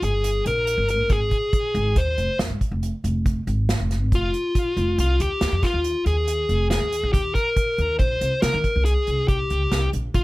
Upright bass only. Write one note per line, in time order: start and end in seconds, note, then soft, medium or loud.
0.02 0.40 G1 medium
0.46 0.74 A#1 medium
0.78 0.99 G1 medium
0.99 1.10 A#1 medium
1.10 1.29 G#1 medium
1.74 1.93 G#1 medium
1.96 2.15 D#2 medium
2.18 2.27 F1 medium
2.39 2.49 F2 medium
2.50 2.60 G#2 medium
2.71 2.90 F1 medium
3.04 3.42 F1 medium
3.47 3.75 G#1 medium
3.80 4.01 F1 medium
4.01 4.12 G#1 medium
4.12 4.31 F1 medium
4.77 4.95 F1 medium
4.98 5.17 C2 medium
5.20 5.29 D#2 medium
5.41 5.51 D#2 medium
5.52 5.62 F2 medium
5.74 5.92 D#2 medium
6.06 6.43 D#2 medium
6.49 6.77 F1 medium
6.82 7.05 D#2 medium
7.03 7.15 A#1 medium
7.14 7.33 D#2 medium
7.78 7.97 D#2 medium
7.99 8.18 A#1 medium
8.21 8.30 C2 medium
8.43 8.52 C3 medium
8.54 8.63 D#3 medium
8.76 8.94 C2 medium
9.08 9.45 C2 medium
9.51 9.70 C#2 medium
9.72 9.91 C2 medium
9.93 10.14 A#1 medium
10.15 10.24 A#1 medium